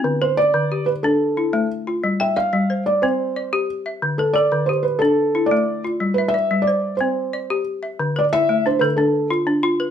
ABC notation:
X:1
M:12/8
L:1/16
Q:3/8=121
K:Ddor
V:1 name="Felt piano"
z2 c2 d6 B2 A8 z4 | z2 e2 f6 d2 c8 z4 | z2 A2 d4 c2 B2 A6 d4 z2 | z2 B2 e4 d4 c8 z4 |
z2 d2 e4 c2 B2 A4 z8 |]
V:2 name="Balafon"
C z B6 G6 z2 E6 F2- | F2 g2 d4 c6 z2 d6 e2- | e2 B2 A4 G6 z2 E6 F2- | F2 e2 d4 c6 z2 d6 e2- |
e2 B2 E4 D2 A2 D6 D4 B2 |]
V:3 name="Balafon"
D,4 z2 D,4 z2 D4 z2 A,4 z2 | G,4 z2 G,4 z2 C4 z2 G4 z2 | D,4 z2 D,4 z2 D4 z2 A,4 z2 | G,4 z2 G,4 z2 C4 z2 G4 z2 |
D,4 z2 A,4 D,4 z2 F4 F4 |]